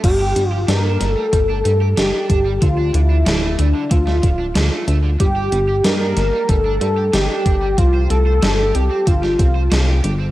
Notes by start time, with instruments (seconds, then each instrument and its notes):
0.04 analog synth bass G1, overdriven electric guitar G3, analog synth lead G4, kick, closed hi-hat, crash
0.20 overdriven electric guitar G4
0.36 analog synth bass G1, overdriven electric guitar G3, closed hi-hat
0.50 analog synth lead F4, overdriven electric guitar G4
0.68 analog synth bass G2, overdriven electric guitar G4, analog synth lead A#4, snare, closed hi-hat
0.84 overdriven electric guitar D4
1.00 analog synth bass G1, overdriven electric guitar D4, snare, closed hi-hat
1.11 analog synth lead A4
1.17 overdriven electric guitar G3
1.33 analog synth bass G1, overdriven electric guitar G3, analog synth lead A4, kick, closed hi-hat
1.49 overdriven electric guitar D4
1.65 analog synth bass G2, overdriven electric guitar G3, closed hi-hat
1.81 overdriven electric guitar G4
1.97 analog synth bass G1, overdriven electric guitar G4, analog synth lead G4, snare, closed hi-hat
2.13 overdriven electric guitar D4
2.30 analog synth bass G1, overdriven electric guitar D4, kick, closed hi-hat
2.46 overdriven electric guitar G3
2.62 analog synth bass D2, overdriven electric guitar D3, analog synth lead F4, kick, closed hi-hat
2.78 overdriven electric guitar D4
2.94 analog synth bass D2, overdriven electric guitar D3, analog synth lead E4, closed hi-hat
3.10 overdriven electric guitar D4
3.26 analog synth bass D1, overdriven electric guitar D4, snare, closed hi-hat
3.43 overdriven electric guitar A3
3.59 analog synth bass D2, overdriven electric guitar A3, analog synth lead D4, closed hi-hat
3.75 overdriven electric guitar D3
3.91 analog synth bass D2, overdriven electric guitar D3, analog synth lead F4, kick, closed hi-hat
4.07 overdriven electric guitar A3, snare
4.23 analog synth bass D1, overdriven electric guitar D3, kick, closed hi-hat
4.39 overdriven electric guitar D4
4.55 analog synth bass D2, overdriven electric guitar D4, snare, closed hi-hat
4.72 overdriven electric guitar A3
4.88 analog synth bass D2, overdriven electric guitar A3, closed hi-hat
5.04 overdriven electric guitar D3
5.20 analog synth bass G1, overdriven electric guitar G3, analog synth lead G4, kick, closed hi-hat
5.36 overdriven electric guitar G4
5.52 analog synth bass G1, overdriven electric guitar G3, closed hi-hat
5.68 overdriven electric guitar G4
5.84 analog synth bass G2, overdriven electric guitar G4, analog synth lead A#4, snare, closed hi-hat
6.01 overdriven electric guitar D4
6.17 analog synth bass G1, overdriven electric guitar D4, snare, closed hi-hat
6.33 overdriven electric guitar G3
6.49 analog synth bass G1, overdriven electric guitar G3, analog synth lead A4, kick, closed hi-hat
6.65 overdriven electric guitar D4
6.81 analog synth bass G2, overdriven electric guitar G3, closed hi-hat
6.97 overdriven electric guitar G4
7.13 analog synth bass G1, overdriven electric guitar G4, analog synth lead G4, snare, closed hi-hat
7.30 overdriven electric guitar D4
7.46 analog synth bass G1, overdriven electric guitar D4, kick, closed hi-hat
7.62 overdriven electric guitar G3
7.78 analog synth bass C2, overdriven electric guitar C4, analog synth lead F4, kick, closed hi-hat
7.94 overdriven electric guitar C5
8.10 analog synth bass C2, overdriven electric guitar C4, analog synth lead A4, closed hi-hat
8.27 overdriven electric guitar C5
8.43 analog synth bass G1, overdriven electric guitar C5, snare, closed hi-hat
8.59 overdriven electric guitar G4
8.75 analog synth bass C2, overdriven electric guitar G4, analog synth lead G4, closed hi-hat
8.91 overdriven electric guitar C4
9.07 analog synth bass G1, overdriven electric guitar C4, analog synth lead F4, kick, closed hi-hat
9.23 overdriven electric guitar G4, snare
9.39 analog synth bass C2, overdriven electric guitar C4, kick, closed hi-hat
9.55 overdriven electric guitar C5
9.71 analog synth bass C2, overdriven electric guitar C5, snare, closed hi-hat
9.88 overdriven electric guitar G4
10.04 analog synth bass G1, overdriven electric guitar G4, closed hi-hat
10.20 overdriven electric guitar C4